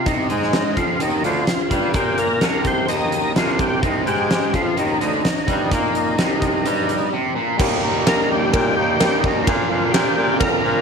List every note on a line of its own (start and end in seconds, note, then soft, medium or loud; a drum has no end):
0.06 0.28 C2 medium
0.06 0.29 C3 medium
0.06 0.28 D#4 medium
0.06 kick medium
0.06 closed hi-hat medium
0.29 0.74 G#2 medium
0.29 0.76 G#3 medium
0.29 0.78 D#4 medium
0.29 closed hi-hat medium
0.42 snare soft
0.53 snare loud
0.53 closed hi-hat medium
0.77 0.99 F2 medium
0.77 0.99 F3 medium
0.77 1.01 F4 medium
0.77 kick medium
0.77 closed hi-hat medium
1.00 1.22 D#2 medium
1.00 1.23 D#3 medium
1.00 1.23 D#4 medium
1.00 closed hi-hat medium
1.23 1.46 D2 medium
1.23 1.47 D3 medium
1.23 1.91 F4 medium
1.23 closed hi-hat medium
1.47 1.64 C2 soft
1.47 muted overdriven electric guitar stroke soft
1.47 snare loud
1.47 closed hi-hat medium
1.71 1.93 G2 medium
1.71 1.94 G3 medium
1.71 kick medium
1.71 closed hi-hat medium
1.94 2.38 A#2 medium
1.94 2.41 A#3 medium
1.94 2.19 G4 medium
1.94 kick medium
1.94 closed hi-hat medium
2.18 2.67 A#4 medium
2.18 closed hi-hat medium
2.41 2.85 C2 medium
2.41 2.88 C3 medium
2.41 snare loud
2.41 closed hi-hat medium
2.65 2.90 C5 medium
2.65 kick medium
2.65 closed hi-hat medium
2.88 3.32 D#2 medium
2.88 3.35 D#3 medium
2.88 3.33 D#5 medium
2.88 closed hi-hat medium
3.12 closed hi-hat medium
3.35 3.79 C2 medium
3.35 3.82 C3 medium
3.35 3.59 F4 medium
3.35 snare loud
3.35 closed hi-hat medium
3.48 snare soft
3.59 3.84 G4 medium
3.59 kick medium
3.59 closed hi-hat medium
3.83 4.05 C2 medium
3.83 4.06 C3 medium
3.83 4.05 D#4 medium
3.83 kick medium
3.83 closed hi-hat medium
4.06 4.50 G#2 medium
4.06 4.53 G#3 medium
4.06 4.56 G4 medium
4.06 closed hi-hat medium
4.31 snare loud
4.31 closed hi-hat medium
4.53 4.76 F2 medium
4.53 4.76 F3 medium
4.53 4.78 F4 medium
4.53 kick medium
4.53 closed hi-hat medium
4.76 4.99 D#2 medium
4.76 5.00 D#3 medium
4.76 7.10 D#4 medium
4.76 closed hi-hat medium
5.00 5.22 D2 medium
5.00 5.23 D3 medium
5.00 closed hi-hat medium
5.24 5.41 C2 soft
5.24 muted overdriven electric guitar stroke soft
5.24 snare loud
5.24 closed hi-hat medium
5.37 snare soft
5.48 5.70 G2 medium
5.48 5.71 G3 medium
5.48 kick medium
5.48 closed hi-hat medium
5.71 6.15 A#2 medium
5.71 6.18 A#3 medium
5.71 kick medium
5.71 closed hi-hat medium
5.95 closed hi-hat medium
6.18 6.62 C2 medium
6.18 6.64 C3 medium
6.18 snare loud
6.18 closed hi-hat medium
6.42 kick medium
6.42 closed hi-hat medium
6.65 7.09 G2 medium
6.65 7.12 G3 medium
6.65 closed hi-hat medium
6.89 closed hi-hat medium
7.13 7.35 C3 medium
7.35 7.58 A#2 medium
7.58 7.81 D#2 medium
7.58 8.05 D#3 medium
7.58 8.06 G3 medium
7.58 9.44 A#3 medium
7.58 7.85 A#3 medium
7.58 9.44 D#4 medium
7.58 7.97 D#4 medium
7.58 7.83 D#4 medium
7.58 9.44 G4 medium
7.58 7.97 G4 medium
7.58 7.81 G4 loud
7.58 9.44 A#4 medium
7.58 7.98 A#4 medium
7.58 kick loud
7.58 crash loud
7.58 cowbell medium
7.83 8.05 D#2 medium
7.83 8.06 G3 medium
7.83 8.07 A#3 medium
7.83 8.08 D#4 medium
7.83 8.08 G4 medium
8.06 8.28 D#2 medium
8.06 9.00 D#3 medium
8.06 8.98 G3 loud
8.06 8.78 A#3 loud
8.06 8.44 D#4 medium
8.06 8.76 D#4 medium
8.06 8.44 G4 medium
8.06 8.74 G4 loud
8.06 8.44 A#4 medium
8.06 8.31 A#4 loud
8.06 snare loud
8.06 ride bell medium
8.06 cowbell medium
8.30 8.52 D#2 medium
8.30 8.75 G4 loud
8.53 8.75 A#2 medium
8.53 8.91 D#4 medium
8.53 8.91 G4 medium
8.53 8.91 A#4 medium
8.53 kick loud
8.53 ride bell medium
8.53 cowbell medium
8.76 8.98 D#2 medium
8.76 8.99 A#3 medium
8.76 9.00 D#4 medium
8.76 9.01 G4 medium
8.76 9.25 G4 loud
8.80 9.00 G3 medium
8.99 9.22 D#2 loud
8.99 9.46 D#3 medium
8.99 9.45 G3 medium
8.99 9.25 A#3 medium
8.99 9.37 D#4 medium
8.99 9.24 D#4 medium
8.99 9.37 G4 medium
8.99 9.21 G4 medium
8.99 9.38 A#4 medium
8.99 snare loud
8.99 ride bell medium
8.99 cowbell medium
9.20 9.45 D#2 medium
9.20 9.46 D#4 medium
9.20 9.45 G4 medium
9.20 kick medium
9.25 9.47 G3 medium
9.25 9.47 A#3 medium
9.25 9.46 D#4 medium
9.44 9.92 A#2 medium
9.44 9.69 A#2 medium
9.44 9.93 D3 medium
9.44 9.71 F3 medium
9.44 9.70 A#3 loud
9.44 10.81 C4 medium
9.44 9.84 D4 medium
9.44 10.81 D4 medium
9.44 9.67 F4 medium
9.44 10.81 F4 medium
9.44 9.84 A#4 medium
9.44 10.81 A#4 medium
9.44 9.85 C5 medium
9.44 kick loud
9.44 ride bell medium
9.44 cowbell medium
9.49 9.68 D4 loud
9.68 9.92 A#2 medium
9.68 9.95 A#3 medium
9.68 9.95 D4 medium
9.68 9.93 F4 medium
9.72 9.94 F3 medium
9.92 10.81 A#2 medium
9.92 10.15 A#2 medium
9.92 10.81 D3 loud
9.92 10.65 F3 loud
9.92 10.64 A#3 loud
9.92 10.31 D4 medium
9.92 10.14 G4 medium
9.92 10.31 A#4 medium
9.92 10.32 C5 medium
9.92 snare loud
9.92 ride bell medium
9.92 cowbell medium
9.97 10.62 D4 loud
10.15 10.39 A#2 medium
10.15 10.38 G4 medium
10.40 10.62 F2 medium
10.40 10.77 D4 medium
10.40 10.81 A#4 medium
10.40 10.78 A#4 medium
10.40 10.78 C5 medium
10.40 kick loud
10.40 ride bell medium
10.40 cowbell medium
10.63 10.81 A#2 medium
10.63 10.81 F3 medium
10.63 10.81 A#3 medium
10.63 10.81 D4 medium